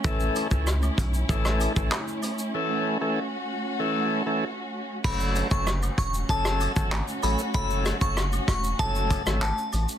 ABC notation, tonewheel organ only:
X:1
M:4/4
L:1/16
Q:1/4=96
K:F#m
V:1 name="Tonewheel organ"
[E,A,CA]3 [E,A,CA] z4 [E,A,CA]3 [E,A,CA] z4 | [E,A,CA]3 [E,A,CA] z4 [E,A,CA]3 [E,A,CA] z4 | [F,A,CA]3 [F,A,CA] z4 [F,A,CA]3 [F,A,CA] z2 [F,A,CA] z | [F,A,CA]3 [F,A,CA] z4 [F,A,CA]3 [F,A,CA] z4 |]